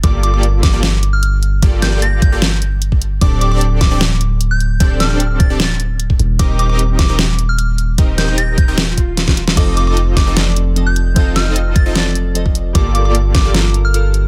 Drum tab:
CC |----------------|----------------|----------------|----------------|
HH |x-x-x-x-x-x-x-x-|x-x-x-x-x-x-x-x-|x-x-x-x-x-x-x-x-|x-x-x-x-x-x-x-x-|
SD |------o-o-------|--o-----o-------|------o-o-------|--o-----o-------|
BD |o-----o---------|o-----o------o--|o-----o---------|o-----o------o--|

CC |----------------|----------------|x---------------|----------------|
HH |x-x-x-x-x-x-x-x-|x-x-x-x-x-x-x-x-|x-x-x-x-x-x-x-x-|x-x-x-x-x-x-x-x-|
SD |------o-o-------|--o-----o---oo-o|------o-o-------|--o-----o-------|
BD |o-----o---------|o-----o---o--o--|o-----o---------|o-----o------o--|

CC |----------------|
HH |x-x-x-x-x-x-x-x-|
SD |------o-o-------|
BD |o-----o---------|